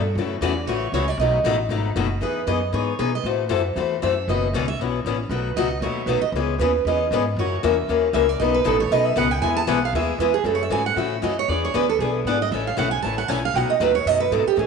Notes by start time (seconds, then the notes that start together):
Already playing: G2
0.15 F#2 C#3 E3 A3 C#4 F#4
0.41 E2 C#3 E3 A3 C#4 F#4 D5
0.66 A1 C#3 E3 A3 C#4 F#4 C#5
0.92 C#2 C#3 E3 A3 C#4 F#4 C#5
1.08 D5
1.17 B1 B2 F#3 A3 D#5
1.22 D#4 F#4
1.44 A1 B2 F#3 A3 D#4 F#4
1.69 G#1 B2 F#3 A3 D#4 F#4
1.96 F#1 B2 F#3 A3 D#4 F#4
2.21 E2 E3 B3 D#4 G#4 B4
2.47 F#2 E3 B3 D#4 G#4 D#5
2.73 G#2 E3 B3 D#4 G#4 C#5
2.99 B2 E3 B3 D#4 G#4 B4
3.15 D#5
3.23 A2 E3 A3 C4 F#4 A4
3.49 F#2 E3 A3 C4 F#4 A4
3.76 E2 E3 A3 C4 F#4 A4 C5
4.02 F#2 E3 A3 C4 F#4 A4 E5
4.28 F#1 B2 E3 B3 C#4 F#4 D#5
4.53 C#2 B2 E3 B3 C#4 F#4 C#5
4.68 E5
4.80 B1 B2 E3 B3 C#4 F#4
5.05 A1 B2 E3 B3 C#4 F#4
5.29 B1 B2 F#3 A3 D#4 F#4 B4
5.56 C#2 B2 F#3 A3 D#4 F#4 D#5
5.81 D#2 B2 F#3 A3 D#4 F#4 C#5
6.06 B1 B2 F#3 A3 D#4 F#4 B4
6.21 D#5, muted upright bass stroke
6.32 C#2 C#3 E3 C#4
6.36 B3 G#4
6.58 D#2 C#3 E3 B3 C#4 G#4 B4
6.85 E2 C#3 E3 B3 C#4 G#4 D#5
7.11 G#2 C#3 E3 B3 C#4 G#4
7.36 F#2 C#3 E3 A#3 C#4 F#4 C#5
7.63 E2 C#3 E3 A#3 C#4 F#4 E5
7.88 D#2 C#3 E3 A#3 C#4 F#4
8.13 C#2 C#3 E3 A#3 C#4 F#4 E5
8.29 D5
8.40 B1 B2 C#3 F#3 B3 D#4 B4 D#5
8.54 B4
8.64 A1 B2 C#3 F#3 B3 D#4 A4 B4
8.80 C#5
8.91 B1 B2 C#3 F#3 B3 D#4 B4 D#5
9.05 E5
9.16 C#2 B2 C#3 F#3 B3 D#4 B4 F#5
9.31 G5
9.41 E2 E3 G#3 B3 E4 G#4 G#5
9.57 A5
9.67 B1 E3 G#3 B3 E4 G#4 F#5
9.85 F5
9.93 D#2 E3 G#3 B3 E4 G#4 E5
10.18 E2 E3 G#3 B3 E4 G#4 B4
10.34 G#4
10.44 F#2 C#3 E3 A3 C#4 F#4 A4
10.55 C#5
10.63 E5
10.70 G#2 C#3 E3 A3 C#4 F#4 G#5
10.86 F#5
10.96 A2 C#3 E3 A3 C#4 F#4 E5
11.22 F#2 C#3 E3 A3 C#4 F#4 D#5
11.39 C#5
11.48 E2 E3 B3 D4 G#4 D5
11.65 C#5
11.74 D2 E3 B3 D4 G#4 B4
11.89 A4
11.99 B1 E3 B3 D4 G#4
12.25 G#1 E3 B3 D4 G#4 F#5
12.42 D#5
12.51 A1 C#3 E3 A3 C#4 A4 E5
12.67 F5
12.77 B1 C#3 E3 A3 C#4 A4 F#5
12.91 G#5
13.02 A1 C#3 E3 A3 C#4 A4 A5
13.18 F#5
13.28 B1 C#3 E3 A3 C#4 A4 G#5
13.45 F5
13.54 B1 B2 F#3 A3 D#4 F#4 F#5
13.69 D#5, muted upright bass stroke
13.80 D#2 B2 F#3 A3 D#4 F#4 B4
13.95 C#5
14.05 F#2 B2 F#3 A3 D#4 F#4 D#5
14.20 B4
14.31 G#2 B2 F#3 A3 D#4 F#4 A4
14.46 G4, muted upright bass stroke
14.56 A2 C#3 E3 A3 C#4 G#4